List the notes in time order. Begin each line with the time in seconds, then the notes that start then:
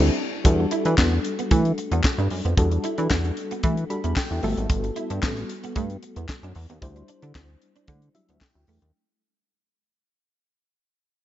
Already playing: D2 D4 E4 A4
0.44 E2 G3 D4 F#4 A4, kick, closed hi-hat
0.59 muted clean electric guitar stroke
0.71 E4, closed hi-hat
0.85 E3 D4, closed hi-hat
0.98 E2 B3, kick, snare, clap
1.00 clap
1.12 muted clean electric guitar stroke
1.25 closed hi-hat
1.39 B3, closed hi-hat
1.51 E3 A3, kick, closed hi-hat
1.65 closed hi-hat
1.78 muted clean electric guitar stroke, closed hi-hat
1.92 E2 B3, closed hi-hat
2.04 kick, snare, clap
2.06 clap
2.18 G2 D4, closed hi-hat
2.30 F#2, muted clean electric guitar stroke, open hi-hat
2.45 F2 B3, closed hi-hat
2.57 E2 G3 D4 F#4 A4, kick, closed hi-hat
2.71 muted clean electric guitar stroke, closed hi-hat
2.84 E4, closed hi-hat
2.98 E3 D4, closed hi-hat
3.10 E2 B3, kick, snare, clap
3.25 muted clean electric guitar stroke, closed hi-hat
3.37 closed hi-hat
3.51 B3, closed hi-hat
3.63 E3 A3, kick, closed hi-hat
3.77 closed hi-hat
3.90 G3 D4 F#4 A4 B5, muted clean electric guitar stroke, closed hi-hat
4.04 E2 B3, closed hi-hat
4.16 G5, kick, snare, clap
4.18 clap
4.31 E2
4.43 G1 G3 A3 B3 F#4 A4 E5, open hi-hat
4.57 G#1, closed hi-hat
4.70 G1, kick, closed hi-hat
4.84 muted clean electric guitar stroke, closed hi-hat
4.96 E4, closed hi-hat
5.10 G2 D4, closed hi-hat
5.23 A1 B3, kick, snare, clap
5.24 clap
5.37 muted clean electric guitar stroke, closed hi-hat
5.49 closed hi-hat
5.64 B3, closed hi-hat
5.76 G2 A3, kick, closed hi-hat
5.90 closed hi-hat
6.03 muted clean electric guitar stroke, closed hi-hat
6.16 E2 B3, closed hi-hat
6.29 kick, snare, clap
6.31 clap
6.43 F#2 D4, closed hi-hat
6.55 E2, muted clean electric guitar stroke, open hi-hat
6.70 D#2 B3, closed hi-hat
6.81 D2 G3 D4 E4 C5, kick, closed hi-hat
6.96 muted clean electric guitar stroke, closed hi-hat
7.08 D4, closed hi-hat
7.22 D3 D4, closed hi-hat
7.35 D2 C4, kick, snare, clap
7.49 muted clean electric guitar stroke
7.62 closed hi-hat
7.76 D4, closed hi-hat
7.88 D3 A3, kick, closed hi-hat
8.02 closed hi-hat
8.14 F#3 G3 D4 E4 E5, muted clean electric guitar stroke, closed hi-hat
8.29 D2 B3, closed hi-hat
8.41 G5, kick, snare, clap
8.43 clap
8.55 D2
8.67 E2 A3, open hi-hat
8.82 D#2, closed hi-hat